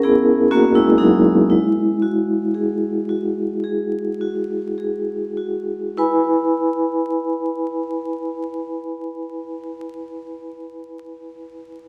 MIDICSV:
0, 0, Header, 1, 2, 480
1, 0, Start_track
1, 0, Key_signature, 4, "major"
1, 0, Tempo, 981997
1, 736, Tempo, 1071429
1, 737, Time_signature, 4, 2, 24, 8
1, 1696, Tempo, 1138520
1, 2176, Tempo, 1192843
1, 5031, End_track
2, 0, Start_track
2, 0, Title_t, "Vibraphone"
2, 0, Program_c, 0, 11
2, 0, Control_c, 0, 64, 127
2, 0, Note_on_c, 0, 61, 73
2, 0, Note_on_c, 0, 68, 76
2, 0, Note_on_c, 0, 70, 98
2, 17, Note_off_c, 0, 68, 0
2, 17, Note_on_c, 0, 68, 98
2, 18, Note_on_c, 0, 64, 63
2, 24, Note_on_c, 0, 59, 77
2, 235, Note_off_c, 0, 59, 0
2, 248, Note_off_c, 0, 61, 0
2, 248, Note_off_c, 0, 68, 0
2, 248, Note_on_c, 0, 61, 67
2, 250, Note_on_c, 0, 66, 95
2, 255, Note_on_c, 0, 58, 83
2, 362, Note_off_c, 0, 58, 0
2, 362, Note_off_c, 0, 64, 0
2, 368, Note_off_c, 0, 66, 0
2, 368, Note_on_c, 0, 64, 94
2, 374, Note_on_c, 0, 56, 64
2, 479, Note_on_c, 0, 68, 63
2, 480, Note_on_c, 0, 63, 78
2, 483, Note_off_c, 0, 56, 0
2, 486, Note_on_c, 0, 54, 62
2, 488, Note_off_c, 0, 64, 0
2, 636, Note_off_c, 0, 61, 0
2, 718, Note_off_c, 0, 54, 0
2, 732, Note_off_c, 0, 68, 0
2, 733, Note_off_c, 0, 63, 0
2, 733, Note_on_c, 0, 64, 72
2, 739, Note_on_c, 0, 56, 50
2, 747, Control_c, 0, 64, 0
2, 751, Note_off_c, 0, 70, 0
2, 843, Control_c, 0, 64, 127
2, 967, Note_on_c, 0, 66, 60
2, 1202, Note_on_c, 0, 68, 57
2, 1349, Note_off_c, 0, 66, 0
2, 1446, Note_on_c, 0, 66, 55
2, 1593, Note_off_c, 0, 68, 0
2, 1691, Note_on_c, 0, 68, 54
2, 1837, Note_off_c, 0, 66, 0
2, 1933, Note_on_c, 0, 66, 53
2, 2076, Note_off_c, 0, 68, 0
2, 2160, Note_off_c, 0, 56, 0
2, 2172, Note_on_c, 0, 68, 57
2, 2174, Note_off_c, 0, 64, 0
2, 2318, Note_off_c, 0, 66, 0
2, 2411, Note_on_c, 0, 66, 54
2, 2561, Note_off_c, 0, 68, 0
2, 2654, Note_on_c, 0, 64, 78
2, 2657, Note_off_c, 0, 66, 0
2, 2657, Note_on_c, 0, 71, 65
2, 2658, Note_on_c, 0, 80, 64
2, 2660, Note_on_c, 0, 83, 64
2, 2667, Control_c, 0, 64, 0
2, 2770, Control_c, 0, 64, 127
2, 4295, Note_off_c, 0, 64, 0
2, 4297, Note_off_c, 0, 71, 0
2, 4298, Note_off_c, 0, 80, 0
2, 4300, Note_off_c, 0, 83, 0
2, 5031, End_track
0, 0, End_of_file